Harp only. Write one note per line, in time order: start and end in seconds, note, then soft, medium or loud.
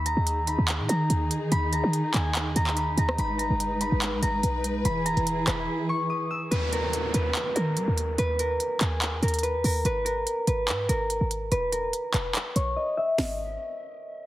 0.00 0.12 B5 loud
0.00 0.49 C#6 medium
0.00 0.78 E6 medium
0.06 0.54 A#5 medium
0.48 0.94 B5 medium
0.88 1.58 A#5 medium
1.52 1.79 B5 loud
1.73 2.56 A#5 medium
2.15 3.65 G#5 medium
2.56 2.83 A#5 medium
2.77 3.04 B5 medium
2.98 3.25 A#5 medium
3.19 3.44 B5 loud
3.38 3.87 A#5 medium
3.81 4.28 B5 medium
4.22 4.91 A#5 medium
4.85 5.12 B5 loud
5.06 5.53 A#5 medium
5.47 6.79 B5 medium
5.89 7.15 C#6 medium
6.10 6.37 D#6 medium
6.31 7.44 E6 medium
6.51 6.79 B4 loud
6.73 7.21 A#4 medium
7.15 7.61 B4 medium
7.55 8.25 A#4 medium
8.19 8.45 B4 loud
8.39 9.23 A#4 medium
8.81 11.09 G#4 medium
9.23 9.49 A#4 medium
9.43 9.71 B4 medium
9.65 9.92 A#4 medium
9.86 10.11 B4 loud
10.05 10.53 A#4 medium
10.47 10.95 B4 medium
10.89 11.58 A#4 medium
11.52 11.68 B4 loud
11.72 11.88 A#4 medium
12.14 12.30 B4 medium
12.56 12.72 C#5 medium
12.76 12.92 D#5 medium
12.97 13.13 E5 medium